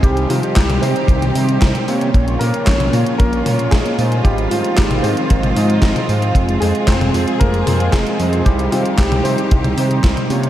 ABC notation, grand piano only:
X:1
M:4/4
L:1/8
Q:1/4=114
K:Cphr
V:1 name="Grand piano"
[G,G] [F,F] [G,G] [Cc]4 z | z [B,B] [Dd]2 [B,B]2 [A,A]2 | [G,G] [F,F] [G,G] [Cc]4 z | z [A,A] [Cc]2 [B,B]2 [A,A]2 |
[G,G] [F,F] [G,G] [Cc]4 z |]